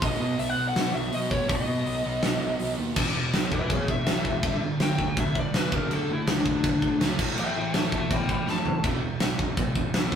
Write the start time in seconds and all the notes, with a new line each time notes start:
0.01 B1 B2 F#3 B3 D#5, kick, open hi-hat
0.20 B2
0.39 B1 E5, open hi-hat
0.49 F#5
0.57 B1 B2 F#3 B3
0.68 F#5
0.76 B2, snare, open hi-hat
0.94 B1 E5
1.12 B2 F#3 B3 D#5, open hi-hat
1.31 C#5, kick
1.49 B1 B2 F#3 B3 D#5, kick, open hi-hat
1.68 B2
1.86 B1, open hi-hat
2.04 B1 B2 F#3 B3
2.22 B1, snare, open hi-hat
2.41 B1
2.59 B1 B2 F#3 B3, open hi-hat
2.78 D#2
2.96 E1 E2 B2 E3, kick, crash
3.15 E1 E2 B2
3.33 B1 E2 B2, snare, crash
3.51 E1 E2 B2 B4 E5, kick
3.70 E1 E2 B2 G#4 C#5, kick, crash
3.88 E1 E2 B2 E5, kick
4.06 B1 E2 B2 E3, snare, crash
4.25 E2 B2, kick
4.43 G1 G2 D3 G3, kick, crash
4.62 G1 G2 D3
4.80 G1 G2 D3 G5, snare, crash
4.98 D2 G2 D3, kick
5.16 D2 G2 D3 E5, kick, crash
5.35 G1 G2 D3, kick
5.40 D5
5.54 E1 G2 D3 G3 B4, snare, crash
5.72 F#1 D3 A3 D4 A#4, kick
5.90 F#1 D3 A3 D4 A4, crash
6.09 F#1 D3 A3
6.13 E4
6.27 C#2 D3 A3 D4, snare, crash
6.45 F#1 D3 A3, kick
6.64 F#1 D3 A3, kick, crash
6.82 F#1 D3 A3, kick
7.00 C#2 D3 A3 D4, snare, crash
7.18 A1 A2 E3 A3, kick, crash
7.36 A1 A2 E3 A3 E5 G5, crash
7.55 A1 A2 E3 E5 G5
7.74 A1 A2 E3 E5 A5, snare, crash
7.92 E1 A2 E3 E5, kick
7.96 A5
8.11 E2 A2 E3 G5 B5, kick, crash
8.28 A1 A2 E3 G5 B5, kick
8.47 A1 A2 E3 A3 A5, snare
8.65 F#1 A2 E3, floor tom
8.83 E1 E2 B2 E3, kick, crash
9.02 E1 E2 B2
9.20 B1 E2 B2, snare, crash
9.39 E1 E2 B2, kick
9.57 E1 E2 B2, kick, crash
9.75 E1 E2 B2, kick
9.94 B1 E2 B2 E3, snare, crash
10.12 E2, kick